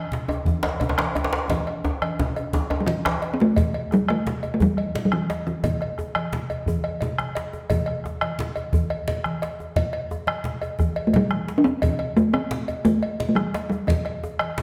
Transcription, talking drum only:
2.81 G3
2.86 E3
3.34 C4
3.41 A3
3.94 G3
4.10 A3
4.54 A3
4.62 G3
5.05 G3
5.13 E3
5.47 E3
5.65 D3
11.07 A3
11.16 G3
11.58 D4
11.64 C4
12.17 A3
12.33 C4
12.85 A3
13.29 A3
13.35 G3
13.70 G3
13.87 E3

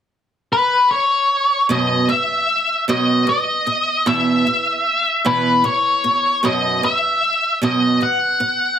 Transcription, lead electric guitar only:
0.53 B4
0.91 C#5
1.72 D#5
2.10 E5
2.90 D#5
3.29 D#5
4.07 E5
5.26 B4
5.65 C#5
6.45 D#5
6.85 E5
7.64 D#5
8.03 F#5

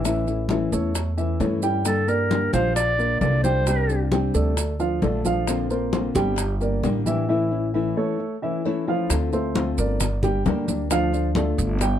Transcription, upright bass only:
Already playing: A1
0.72 E2
1.40 G2
2.53 A#1
3.21 C2
4.34 D2
5.02 A#1
6.15 G1
6.83 A1
9.10 D2
9.78 G1
10.45 D2
11.58 G1

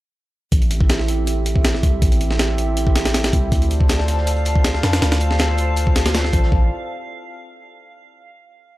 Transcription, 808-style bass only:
0.52 A1
1.83 C2
2.02 A1
3.33 C2
3.52 D2
4.83 F2
5.02 D2
6.33 A1
6.52 A1

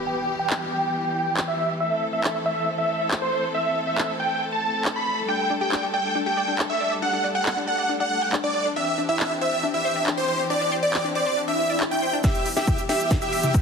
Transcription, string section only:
Already playing: E3 G3 B3 G4
1.80 A3 C4 A4
5.28 G3 D4
8.76 E3 C4 G4
12.24 E3 G3 B3 G4

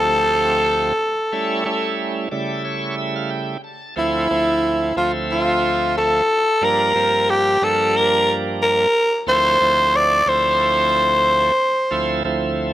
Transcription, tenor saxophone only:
Already playing: A4
3.98 E4
4.97 F4
5.31 F4
5.97 A4
6.64 A#4
7.30 G4
7.63 A4
7.96 A#4
8.62 A#4
9.29 C5
9.96 D5
10.29 C5

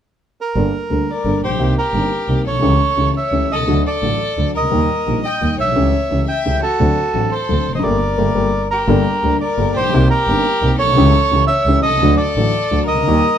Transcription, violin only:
1.10 A#4
1.44 G4
1.78 G4
2.48 A4
3.16 C#5
3.52 A4
3.86 A4
4.54 A#4
5.24 D#5
5.58 C#5
6.27 E5
6.63 F#4
7.33 A4
7.74 C5
7.83 A#4
8.72 G4
9.41 A#4
9.77 G4
10.09 G4
10.79 A4
11.48 C#5
11.84 A4
12.17 A4
12.86 A#4

